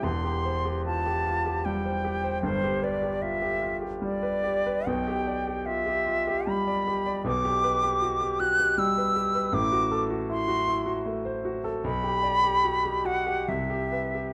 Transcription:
X:1
M:3/4
L:1/16
Q:1/4=76
K:Gmix
V:1 name="Flute"
c'4 a4 g4 | c2 d2 e2 z2 d4 | g4 e4 b4 | [K:G] d'6 f'2 e'4 |
d'2 z2 c'4 z4 | b6 f2 e4 |]
V:2 name="Grand piano"
[E,,,E,,] G c G F G F G G, c G c | [G,,,G,,] G B G F G F G G, B G B | [B,,,B,,] G d G F G F G G, d G d | [K:G] [B,,,B,,] G B G F G F G G, B G B |
[A,,,A,,] F A F E F E F A, c F A | B,,, G d G F G F G C,, G B G |]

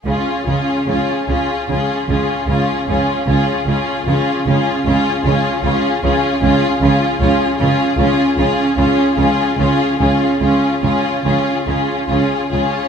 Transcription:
X:1
M:4/4
L:1/8
Q:1/4=76
K:Db
V:1 name="Violin section"
A A A A A A A A | A A A A A A A A | A A A A A A A A | A A A A A A A [Ad] |]
V:2 name="Violin section"
F F F F F F F F | F F F F F F F F | F F F F F F F F | F F F F F F F F |]
V:3 name="Viola section"
D D D D D D D D | D D D D D D D D | D D D D D D D D | D D D D D D D D |]
V:4 name="Cello section" clef=bass
D, D, D, D, D, D, D, D, | D, D, D, D, D, D, D, D, | D, D, D, D, D, D, D, D, | D, D, D, D, D, D, D, D, |]
V:5 name="Double bass section" clef=bass
D,, D,, D,, D,, D,, D,, D,, D,, | D,, D,, D,, D,, D,, D,, D,, D,, | D,, D,, D,, D,, D,, D,, D,, D,, | D,, D,, D,, D,, D,, D,, D,, D,, |]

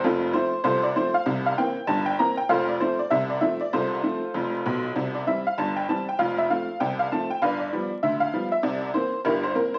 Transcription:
X:1
M:2/4
L:1/16
Q:"Swing 16ths" 1/4=98
K:F
V:1 name="Honky-tonk piano"
[CFA]2 c2 [FAc] d c f | z f g2 a g b g | [Acf] d c d e d e d | [FAc]8- |
[FAc] d e f a g a g | f e f2 g f a g | [=Bdf] d3 e f2 e | d2 c2 [EGB] c B c |]
V:2 name="Honky-tonk piano" clef=bass
[F,,,F,,]2 [F,A,C]2 [C,,C,]2 [F,A,C]2 | [C,,C,]2 [E,B,C]2 [G,,,G,,]2 [E,B,C]2 | [F,,,F,,]2 [F,A,C]2 [C,,C,]2 [F,A,C]2 | [C,,C,]2 [F,A,C]2 [F,,,F,,]2 [=B,,,=B,,]2 |
[C,,C,]2 [E,G,C]2 [G,,,G,,]2 [E,G,C]2 | [F,,,F,,]2 [F,A,C]2 [C,,C,]2 [F,A,C]2 | [G,,,G,,]2 [F,G,=B,]2 [D,,D,]2 [F,G,B,]2 | [C,,C,]2 [E,B,C]2 [G,,,G,,]2 [E,B,C]2 |]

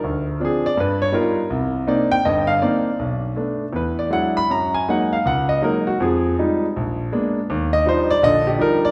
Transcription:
X:1
M:4/4
L:1/8
Q:"Swing" 1/4=162
K:Eb
V:1 name="Grand piano"
B z A d =B _d ^A2- | ^A z d g e f d2- | d z3 =B d ^f =b | b a _g f g e B _G |
A2 z6 | z e c d e G B d |]
V:2 name="Grand piano" clef=bass
D,,2 [F,CD] z G,,2 [G,=B,^DF] z | C,,2 [B,CDE] z [G,,,G,,]2 [B,CDE] z | =B,,,2 [=A,=B,D] z =E,,2 [^F,^G,D=E] z | _G,,2 [_G,A,B,E] z _D,,2 [G,A,B,E] z |
[F,,F,]2 [F,G,A,E] z B,,,2 [A,B,_CD] z | E,,2 [F,G,DE] z [B,,,D,]2 [F,G,DE] z |]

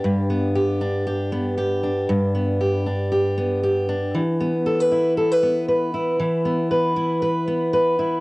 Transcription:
X:1
M:4/4
L:1/16
Q:"Swing 16ths" 1/4=117
K:G
V:1 name="Steel-string acoustic guitar"
[G,,B,DG]2 B,2 G2 D2 G2 B,2 G2 D2 | G,,2 B,2 G2 D2 G2 B,2 G2 D2 | E,2 B,2 A B E2 A B B,2 B2 E2 | E,2 B,2 B2 E2 B2 B,2 B2 E2 |]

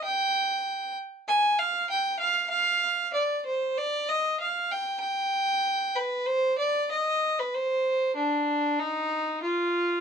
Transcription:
X:1
M:2/4
L:1/16
Q:1/4=96
K:Gphr
V:1 name="Fiddle"
g6 z2 | a2 f2 g2 f2 | f4 d2 c2 | d2 e2 f2 g2 |
g6 =B2 | c2 d2 e3 =B | c4 D4 | [K:Fdor] E4 F4 |]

